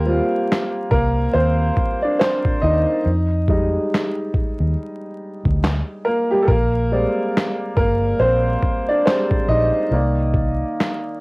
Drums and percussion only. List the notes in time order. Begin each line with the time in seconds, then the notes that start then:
0.52 snare, clap
0.91 kick
1.77 kick
2.21 snare, clap
2.45 kick
3.48 kick
3.94 snare, clap
4.34 kick
5.45 kick
5.64 snare, clap
6.48 kick
7.37 snare, clap
7.77 kick
8.63 kick
9.07 snare, clap
9.31 kick
10.34 kick
10.80 snare, clap